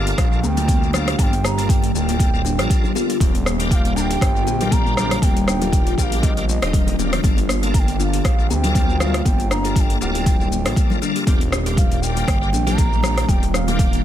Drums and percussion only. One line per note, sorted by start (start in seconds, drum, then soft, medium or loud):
0.07 closed hi-hat soft
0.07 shaker soft
0.18 kick loud
0.18 cross-stick medium
0.18 closed hi-hat medium
0.18 muted conga soft
0.18 shaker medium
0.33 shaker soft
0.43 muted conga medium
0.43 high conga medium
0.43 shaker medium
0.57 closed hi-hat soft
0.57 low conga medium
0.57 shaker soft
0.68 kick loud
0.68 closed hi-hat medium
0.68 muted conga soft
0.68 high conga loud
0.68 shaker medium
0.83 shaker soft
0.93 cross-stick medium
0.93 muted conga soft
0.93 low conga medium
0.93 shaker medium
1.08 cross-stick medium
1.08 closed hi-hat soft
1.08 shaker soft
1.19 kick loud
1.19 closed hi-hat medium
1.19 high conga medium
1.19 shaker medium
1.33 closed hi-hat soft
1.33 muted conga medium
1.33 shaker soft
1.44 cross-stick medium
1.44 high conga medium
1.44 shaker medium
1.58 closed hi-hat soft
1.58 muted conga soft
1.58 shaker soft
1.69 kick loud
1.69 closed hi-hat medium
1.69 shaker medium
1.83 closed hi-hat soft
1.83 muted conga medium
1.83 shaker soft
1.96 shaker medium
2.09 closed hi-hat soft
2.09 high conga medium
2.09 shaker soft
2.19 kick loud
2.19 closed hi-hat medium
2.19 muted conga soft
2.19 shaker medium
2.35 shaker soft
2.45 muted conga medium
2.45 shaker medium
2.59 cross-stick medium
2.59 closed hi-hat soft
2.59 shaker soft
2.70 kick loud
2.70 closed hi-hat medium
2.70 shaker medium
2.84 low conga medium
2.84 shaker soft
2.95 muted conga medium
2.95 high conga medium
2.95 shaker medium
3.10 closed hi-hat soft
3.10 shaker soft
3.20 kick loud
3.20 closed hi-hat medium
3.20 high conga medium
3.20 shaker medium
3.35 closed hi-hat soft
3.35 muted conga medium
3.35 shaker soft
3.46 cross-stick medium
3.46 high conga medium
3.46 shaker medium
3.60 closed hi-hat soft
3.60 muted conga soft
3.60 shaker soft
3.71 kick loud
3.71 closed hi-hat medium
3.71 shaker medium
3.85 closed hi-hat soft
3.85 muted conga medium
3.85 shaker soft
3.97 shaker medium
4.11 closed hi-hat soft
4.11 shaker soft
4.21 kick loud
4.21 cross-stick medium
4.21 closed hi-hat medium
4.21 muted conga soft
4.21 shaker soft
4.36 shaker soft
4.46 muted conga medium
4.46 high conga medium
4.46 shaker medium
4.61 closed hi-hat soft
4.61 low conga loud
4.61 shaker soft
4.72 kick loud
4.72 closed hi-hat medium
4.72 muted conga soft
4.72 high conga loud
4.72 shaker medium
4.86 shaker soft
4.97 cross-stick medium
4.97 muted conga medium
4.97 low conga medium
4.97 shaker medium
5.11 cross-stick medium
5.11 closed hi-hat soft
5.11 shaker soft
5.22 kick loud
5.22 closed hi-hat medium
5.22 high conga medium
5.22 shaker medium
5.37 closed hi-hat soft
5.37 muted conga medium
5.37 shaker soft
5.48 cross-stick loud
5.48 high conga medium
5.48 shaker medium
5.61 closed hi-hat soft
5.61 muted conga soft
5.61 low conga medium
5.61 shaker soft
5.73 kick loud
5.73 closed hi-hat medium
5.73 shaker medium
5.87 closed hi-hat soft
5.87 muted conga medium
5.87 shaker soft
5.98 kick medium
5.98 shaker medium
6.12 closed hi-hat soft
6.12 high conga medium
6.12 shaker soft
6.23 kick loud
6.23 closed hi-hat medium
6.23 muted conga soft
6.23 shaker medium
6.37 closed hi-hat soft
6.37 shaker soft
6.49 muted conga medium
6.49 shaker medium
6.62 cross-stick loud
6.62 closed hi-hat soft
6.62 shaker soft
6.73 kick loud
6.73 closed hi-hat medium
6.73 muted conga soft
6.73 shaker medium
6.87 closed hi-hat soft
6.87 low conga loud
6.87 shaker soft
6.99 muted conga medium
6.99 high conga medium
6.99 shaker medium
7.13 cross-stick medium
7.13 closed hi-hat soft
7.13 shaker soft
7.23 kick loud
7.23 closed hi-hat medium
7.23 high conga medium
7.23 shaker medium
7.37 closed hi-hat soft
7.37 muted conga medium
7.37 shaker soft
7.49 cross-stick loud
7.49 high conga medium
7.49 shaker loud
7.63 closed hi-hat soft
7.63 muted conga soft
7.63 shaker soft
7.74 kick loud
7.74 closed hi-hat medium
7.74 shaker medium
7.88 closed hi-hat soft
7.88 muted conga medium
7.88 shaker soft
8.00 shaker medium
8.13 closed hi-hat soft
8.13 shaker soft
8.24 kick loud
8.24 cross-stick loud
8.24 closed hi-hat medium
8.24 muted conga soft
8.24 shaker medium
8.39 shaker soft
8.50 muted conga medium
8.50 high conga medium
8.50 shaker medium
8.64 closed hi-hat soft
8.64 low conga loud
8.64 shaker soft
8.75 kick loud
8.75 closed hi-hat medium
8.75 muted conga soft
8.75 high conga loud
8.75 shaker medium
8.90 shaker soft
9.00 cross-stick loud
9.00 muted conga medium
9.00 low conga loud
9.00 shaker medium
9.14 cross-stick medium
9.14 closed hi-hat soft
9.14 shaker soft
9.25 kick loud
9.25 closed hi-hat medium
9.25 high conga loud
9.25 shaker medium
9.38 closed hi-hat soft
9.38 muted conga medium
9.38 shaker soft
9.50 cross-stick loud
9.50 high conga medium
9.50 shaker loud
9.64 closed hi-hat soft
9.64 muted conga soft
9.64 shaker soft
9.76 kick loud
9.76 closed hi-hat medium
9.76 shaker medium
9.90 closed hi-hat soft
9.90 muted conga medium
9.90 shaker soft
10.02 shaker loud
10.14 closed hi-hat soft
10.14 high conga medium
10.14 shaker soft
10.26 kick loud
10.26 closed hi-hat medium
10.26 muted conga soft
10.26 shaker medium
10.41 shaker soft
10.52 muted conga medium
10.52 shaker loud
10.66 cross-stick loud
10.66 closed hi-hat soft
10.66 shaker soft
10.76 kick loud
10.76 closed hi-hat medium
10.76 muted conga soft
10.76 shaker medium
10.90 low conga loud
10.90 shaker soft
11.02 muted conga medium
11.02 high conga medium
11.02 shaker loud
11.16 closed hi-hat soft
11.16 shaker soft
11.27 kick loud
11.27 closed hi-hat medium
11.27 high conga loud
11.27 shaker medium
11.41 closed hi-hat soft
11.41 muted conga medium
11.41 shaker soft
11.52 cross-stick loud
11.52 high conga medium
11.52 shaker loud
11.66 closed hi-hat soft
11.66 muted conga soft
11.66 shaker soft
11.77 kick loud
11.77 closed hi-hat medium
11.77 shaker medium
11.91 closed hi-hat soft
11.91 muted conga medium
11.91 shaker soft
12.03 shaker loud
12.17 closed hi-hat soft
12.17 shaker soft
12.28 kick loud
12.28 cross-stick loud
12.28 closed hi-hat medium
12.28 muted conga soft
12.28 shaker medium
12.43 shaker soft
12.53 muted conga medium
12.53 high conga medium
12.53 shaker loud
12.67 closed hi-hat soft
12.67 low conga loud
12.67 shaker soft
12.78 kick loud
12.78 closed hi-hat medium
12.78 muted conga soft
12.78 high conga loud
12.78 shaker medium
12.93 shaker soft
13.03 cross-stick loud
13.03 muted conga medium
13.03 low conga loud
13.03 shaker loud
13.18 cross-stick medium
13.18 closed hi-hat soft
13.18 shaker soft
13.29 kick loud
13.29 closed hi-hat medium
13.29 high conga medium
13.29 shaker medium
13.43 closed hi-hat soft
13.43 muted conga soft
13.43 shaker soft
13.54 cross-stick medium
13.54 high conga medium
13.54 shaker loud
13.68 closed hi-hat soft
13.68 muted conga soft
13.68 low conga medium
13.68 shaker soft
13.79 kick loud
13.79 closed hi-hat medium
13.79 shaker medium
13.93 closed hi-hat soft
13.93 muted conga soft
13.93 shaker soft